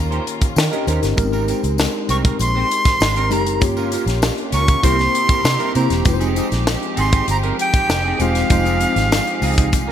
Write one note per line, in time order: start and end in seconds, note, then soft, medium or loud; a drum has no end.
0.00 0.18 D#2 medium
0.00 1.15 D#3 medium
0.00 1.16 A#3 medium
0.00 1.20 A#3 medium
0.00 1.03 C#4 medium
0.00 1.15 C#4 medium
0.00 0.88 D#4 medium
0.00 1.16 F4 medium
0.00 0.72 G4 medium
0.00 1.19 C#5 medium
0.00 0.27 A#5 medium
0.11 0.25 C#4 medium
0.11 0.26 G4 medium
0.11 0.26 C5 medium
0.11 closed hi-hat soft
0.26 muted clean electric guitar stroke soft
0.26 closed hi-hat medium
0.41 muted clean electric guitar stroke soft
0.41 kick medium
0.41 closed hi-hat medium
0.41 tambourine soft
0.56 0.68 D#3 loud
0.56 0.71 A#4 medium
0.56 0.71 G5 medium
0.56 muted clean electric guitar stroke soft
0.56 snare loud
0.56 tambourine medium
0.71 0.86 C#4 medium
0.71 0.87 G4 medium
0.71 0.87 A#4 medium
0.71 0.86 D#5 medium
0.71 closed hi-hat soft
0.87 0.98 D#2 medium
0.87 0.99 C#4 medium
0.87 1.02 D#4 medium
0.87 1.00 G4 medium
0.87 1.00 A#4 medium
0.87 1.02 C5 medium
0.87 closed hi-hat medium
0.87 tambourine soft
1.02 1.14 G1 medium
1.02 1.32 C#4 medium
1.02 1.16 A#4 medium
1.02 muted clean electric guitar stroke soft
1.02 snare soft
1.02 closed hi-hat medium
1.02 tambourine soft
1.16 1.52 G#1 loud
1.16 2.28 G#3 medium
1.16 3.60 G#3 medium
1.16 1.24 B3 medium
1.16 3.60 C4 medium
1.16 2.28 D#4 medium
1.16 2.28 G4 medium
1.16 2.28 A#4 medium
1.16 muted clean electric guitar stroke soft
1.16 kick loud
1.16 closed hi-hat medium
1.16 tambourine medium
1.23 2.31 C4 medium
1.33 1.46 C4 medium
1.33 1.48 G4 medium
1.33 1.48 A#4 medium
1.33 tambourine soft
1.48 1.60 C4 medium
1.48 1.61 G4 medium
1.48 1.61 A#4 medium
1.48 closed hi-hat medium
1.48 tambourine medium
1.63 1.86 C#2 medium
1.63 muted clean electric guitar stroke soft
1.63 closed hi-hat soft
1.63 tambourine soft
1.78 muted clean electric guitar stroke soft
1.78 snare loud
1.78 tambourine medium
1.94 muted clean electric guitar stroke medium
2.09 2.32 C2 medium
2.09 2.25 C4 medium
2.09 2.24 G4 medium
2.09 2.23 A#4 medium
2.09 2.17 C#6 loud
2.09 closed hi-hat medium
2.09 tambourine medium
2.24 2.37 C4 medium
2.24 2.37 G4 medium
2.24 2.37 A#4 medium
2.24 kick loud
2.24 closed hi-hat medium
2.24 tambourine soft
2.39 2.62 A#1 medium
2.39 3.34 C6 loud
2.39 muted clean electric guitar stroke soft
2.39 closed hi-hat medium
2.39 tambourine medium
2.55 2.69 C4 medium
2.55 2.70 G4 medium
2.55 2.71 C5 medium
2.70 muted clean electric guitar stroke soft
2.70 closed hi-hat medium
2.85 muted clean electric guitar stroke soft
2.85 kick loud
2.85 snare soft
2.85 closed hi-hat medium
2.85 tambourine soft
3.00 3.31 G#1 loud
3.00 muted clean electric guitar stroke soft
3.00 snare loud
3.00 tambourine medium
3.16 3.30 C4 medium
3.16 3.31 G4 medium
3.16 3.32 A#4 medium
3.16 closed hi-hat soft
3.30 3.62 F#1 medium
3.30 3.58 G#3 medium
3.30 3.58 C4 medium
3.30 3.43 C4 medium
3.30 3.58 D#4 medium
3.30 3.59 G4 medium
3.30 3.44 G4 medium
3.30 3.59 A#4 medium
3.30 3.44 A#4 medium
3.30 3.62 A#5 medium
3.30 closed hi-hat medium
3.30 tambourine soft
3.46 muted clean electric guitar stroke medium
3.46 closed hi-hat medium
3.61 3.96 G1 loud
3.61 4.72 A#3 medium
3.61 4.83 A#3 medium
3.61 4.72 C#4 medium
3.61 4.72 F4 medium
3.61 4.82 F4 medium
3.61 4.73 G4 medium
3.61 9.92 G4 medium
3.61 4.73 C#5 medium
3.61 muted clean electric guitar stroke soft
3.61 kick loud
3.61 closed hi-hat medium
3.61 tambourine medium
3.77 3.90 C#4 medium
3.77 3.92 F4 medium
3.77 3.92 A#4 medium
3.77 tambourine soft
3.92 4.04 C#4 medium
3.92 4.05 F4 medium
3.92 4.05 A#4 medium
3.92 closed hi-hat medium
3.92 tambourine medium
4.06 4.29 A#1 loud
4.06 muted clean electric guitar stroke soft
4.06 snare soft
4.06 closed hi-hat medium
4.06 tambourine soft
4.22 muted clean electric guitar stroke soft
4.22 snare loud
4.22 tambourine medium
4.37 muted clean electric guitar stroke soft
4.37 closed hi-hat soft
4.52 4.75 C#2 medium
4.52 4.68 C#4 medium
4.52 4.67 F4 medium
4.52 4.66 A#4 medium
4.52 4.86 C#6 loud
4.52 closed hi-hat medium
4.52 tambourine medium
4.67 4.81 C#4 medium
4.67 4.81 F4 medium
4.67 4.80 A#4 medium
4.67 kick loud
4.67 closed hi-hat medium
4.67 tambourine soft
4.83 5.06 C2 loud
4.83 6.05 C3 medium
4.83 5.66 A#3 medium
4.83 5.67 C4 medium
4.83 4.99 C4 medium
4.83 9.92 C4 medium
4.83 5.67 E4 medium
4.83 6.05 E4 medium
4.83 4.99 E4 medium
4.83 5.67 G4 medium
4.83 6.05 A#4 medium
4.83 4.97 A#4 loud
4.83 5.67 C5 medium
4.83 5.75 C6 loud
4.83 kick loud
4.83 closed hi-hat medium
4.83 tambourine medium
4.98 muted clean electric guitar stroke soft
4.98 snare soft
4.98 closed hi-hat soft
5.14 muted clean electric guitar stroke soft
5.14 closed hi-hat medium
5.28 5.42 C4 medium
5.28 5.42 E4 medium
5.28 5.41 A#4 medium
5.28 kick loud
5.28 closed hi-hat medium
5.28 tambourine soft
5.44 5.56 C3 loud
5.44 muted clean electric guitar stroke soft
5.44 snare loud
5.44 tambourine medium
5.59 5.73 C4 medium
5.59 5.74 E4 medium
5.59 5.75 A#4 medium
5.59 closed hi-hat soft
5.74 5.87 C3 loud
5.74 6.03 A#3 medium
5.74 5.87 C4 medium
5.74 6.03 C4 medium
5.74 5.88 E4 medium
5.74 6.03 E4 medium
5.74 6.03 G4 medium
5.74 5.88 A#4 medium
5.74 6.04 C5 medium
5.74 6.04 A#5 medium
5.74 closed hi-hat medium
5.74 tambourine soft
5.90 6.02 E1 loud
5.90 muted clean electric guitar stroke medium
5.90 snare soft
5.90 closed hi-hat medium
5.90 tambourine soft
6.05 6.40 F1 loud
6.05 9.92 F3 medium
6.05 7.17 G#3 medium
6.05 7.17 C4 medium
6.05 9.92 D#4 medium
6.05 7.17 D#4 medium
6.05 7.17 F4 medium
6.05 9.92 G#4 medium
6.05 6.13 B4 medium
6.05 muted clean electric guitar stroke soft
6.05 kick loud
6.05 closed hi-hat medium
6.05 tambourine soft
6.13 7.21 C5 medium
6.20 6.35 C4 medium
6.20 6.36 D#4 medium
6.20 6.36 G#4 medium
6.20 closed hi-hat soft
6.20 tambourine soft
6.36 6.48 C4 medium
6.36 6.49 D#4 medium
6.36 6.49 G#4 medium
6.36 closed hi-hat medium
6.36 tambourine medium
6.52 6.75 A#1 loud
6.52 muted clean electric guitar stroke soft
6.52 snare soft
6.52 closed hi-hat medium
6.52 tambourine soft
6.66 muted clean electric guitar stroke soft
6.66 snare loud
6.66 tambourine medium
6.81 muted clean electric guitar stroke soft
6.81 closed hi-hat soft
6.96 7.20 G#1 loud
6.96 7.12 C4 medium
6.96 7.11 D#4 medium
6.96 7.10 G#4 loud
6.96 7.27 C6 loud
6.96 closed hi-hat medium
6.96 tambourine medium
7.12 7.25 C4 medium
7.12 7.25 D#4 medium
7.12 7.24 G#4 medium
7.12 kick loud
7.12 closed hi-hat medium
7.12 tambourine soft
7.27 7.51 G1 medium
7.27 7.37 A#5 loud
7.27 muted clean electric guitar stroke soft
7.27 closed hi-hat medium
7.27 tambourine medium
7.43 7.57 C4 medium
7.43 7.58 D#4 medium
7.43 7.59 A#4 medium
7.43 closed hi-hat soft
7.58 8.23 G5 loud
7.58 muted clean electric guitar stroke soft
7.58 closed hi-hat medium
7.73 muted clean electric guitar stroke medium
7.73 kick loud
7.73 closed hi-hat medium
7.73 tambourine soft
7.89 8.12 F1 medium
7.89 muted clean electric guitar stroke soft
7.89 snare loud
7.89 tambourine medium
8.04 8.18 C4 medium
8.04 8.19 D#4 medium
8.04 8.19 G#4 medium
8.19 8.42 E1 medium
8.19 8.48 G#3 medium
8.19 8.32 C4 medium
8.19 8.48 C4 medium
8.19 8.32 D#4 medium
8.19 8.48 D#4 medium
8.19 8.48 F4 medium
8.19 8.32 G#4 medium
8.19 8.48 C5 medium
8.19 9.92 F5 loud
8.19 closed hi-hat medium
8.19 tambourine soft
8.35 muted clean electric guitar stroke soft
8.35 snare soft
8.35 closed hi-hat medium
8.35 tambourine soft
8.50 8.84 F1 loud
8.50 9.62 G#3 medium
8.50 9.62 C4 medium
8.50 9.62 D#4 medium
8.50 9.62 F4 medium
8.50 9.62 C5 medium
8.50 muted clean electric guitar stroke soft
8.50 kick loud
8.50 closed hi-hat medium
8.50 tambourine soft
8.65 8.79 C4 medium
8.65 8.80 D#4 medium
8.65 8.81 G#4 medium
8.65 closed hi-hat soft
8.65 tambourine soft
8.80 8.93 C4 medium
8.80 8.93 D#4 medium
8.80 8.94 G#4 medium
8.80 closed hi-hat medium
8.80 tambourine soft
8.96 9.19 G#1 medium
8.96 snare soft
8.96 closed hi-hat soft
8.96 tambourine soft
9.12 muted clean electric guitar stroke soft
9.12 snare loud
9.12 tambourine medium
9.26 muted clean electric guitar stroke soft
9.26 closed hi-hat soft
9.42 9.73 C#2 medium
9.42 9.58 C4 medium
9.42 9.57 D#4 medium
9.42 9.56 G#4 medium
9.42 open hi-hat medium
9.42 tambourine medium
9.57 9.70 C4 medium
9.57 9.70 D#4 medium
9.57 9.70 G#4 medium
9.57 kick loud
9.57 closed hi-hat medium
9.57 tambourine soft
9.72 9.92 C2 medium
9.72 muted clean electric guitar stroke medium
9.72 kick medium
9.72 closed hi-hat medium
9.72 tambourine medium
9.88 9.92 D#4 medium
9.88 9.92 A#4 medium